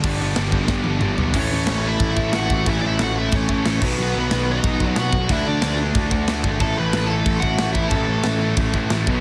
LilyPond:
<<
  \new Staff \with { instrumentName = "Overdriven electric guitar" } { \time 4/4 \key a \major \tempo 4 = 182 << { r1 | cis''8 cis''4 e''4. fis''8 fis''8 | e''16. d''32 e''8 fis''8 e''8 cis''4. r8 | b'8 b'4 dis''4. fis''4 |
e''8 d''4 r2 r8 | a''8 b''4 a''4 fis''4 e''8 | a''2 r2 | } \\ { r1 | cis'8 cis'4 e'4. fis'8 fis'8 | e'8 e'8 fis'8 e'8 cis'4. r8 | b8 b4 dis'4. fis'4 |
e'8 d'4 r2 r8 | a'8 b'4 a'4 fis'4 e'8 | a'2 r2 | } >> }
  \new Staff \with { instrumentName = "Overdriven electric guitar" } { \time 4/4 \key a \major <g, d g b d'>8 <g, d g b d'>8 <g, d g b d'>8 <g, d g b d'>8 <g, d g b d'>8 <g, d g b d'>8 <g, d g b d'>8 <g, d g b d'>8 | <a, e a cis' e'>2~ <a, e a cis' e'>8 <a, e a cis' e'>8 <a, e a cis' e'>4 | <a, e a cis' e'>2~ <a, e a cis' e'>8 <a, e a cis' e'>8 <a, e a cis' e'>8 <b, dis fis b fis'>8~ | <b, dis fis b fis'>2 <b, dis fis b fis'>8 <b, dis fis b fis'>4 r8 |
<d a d' fis'>2~ <d a d' fis'>8 <d a d' fis'>8 <d a d' fis'>4 | <a, e a cis' e'>2~ <a, e a cis' e'>8 <a, e a cis' e'>8 <a, e a cis' e'>4 | <a, e a cis' e'>2~ <a, e a cis' e'>8 <a, e a cis' e'>8 <a, e a cis' e'>8 <b, fis b dis'>8 | }
  \new Staff \with { instrumentName = "Distorted electric guitar" } { \clef bass \time 4/4 \key a \major <g, d g>2.~ <g, d g>8 <g, d g>8 | <a, e a>4. <a, e a>4. <a, e a>4 | <a, e a>4. <a, e a>4. <a, e a>8 <b, fis b>8~ | <b, fis b>4 <b, fis b>4. <b, fis b>4 r8 |
<d a d'>4. <d a d'>4. <d a d'>4 | <a, e a>4. <a, e a>4. <a, e a>4 | <a, e a>4. <a, e a>4. <a, e a>8 <b, fis b>8 | }
  \new Staff \with { instrumentName = "Overdriven electric guitar" } { \clef bass \time 4/4 \key a \major <g, d g>8 <g, d g>8 <g, d g>8 <g, d g>8 <g, d g>8 <g, d g>8 <g, d g>8 <g, d g>8 | <a, e a>2.~ <a, e a>8 <a, e a>8 | <a, e a>2.~ <a, e a>8 <b, fis b>8~ | <b, fis b>2. <b, fis b>8 r8 |
<d a d'>2.~ <d a d'>8 <d a d'>8 | <a, e a>2.~ <a, e a>8 <a, e a>8 | <a, e a>2.~ <a, e a>8 <b, fis b>8 | }
  \new Staff \with { instrumentName = "Picked electric bass" } { \clef bass \time 4/4 \key a \major g,,4 g,,8 g,,8 g,,8 g,,8 g,,8 b,,8 | a,,8 a,,8 a,,4 a,,8 a,,8 a,,8 a,,8 | a,,8 a,,8 a,,4 a,,8 a,,8 a,,8 b,,8 | b,,8 b,,8 b,,4 b,,8 b,,8 b,,8 b,,8 |
d,8 d,8 d,4 d,8 d,8 d,8 gis,,8 | a,,8 a,,8 a,,4 a,,8 a,,8 a,,8 a,,8 | a,,8 a,,8 a,,4 a,,8 a,,8 a,,8 b,,8 | }
  \new DrumStaff \with { instrumentName = "Drums" } \drummode { \time 4/4 <cymc bd>4 <cymc sn>8 bd8 <bd sn>8 tommh8 toml8 tomfh8 | <cymc bd>4 <cymc sn>4 <cymc bd>8 bd8 <cymc sn>8 bd8 | <cymc bd>4 <cymc sn>4 <cymc bd>8 bd8 <cymc sn>8 <cymc bd>8 | cymc4 <cymc sn>4 <cymc bd>8 bd8 <cymc sn>8 bd8 |
<cymc bd>4 <cymc sn>4 <cymc bd>8 bd8 <cymc sn>8 bd8 | <cymc bd>4 <cymc sn>4 <cymc bd>8 bd8 <cymc sn>8 bd8 | <cymc bd>4 <cymc sn>4 <cymc bd>8 bd8 <cymc sn>8 bd8 | }
>>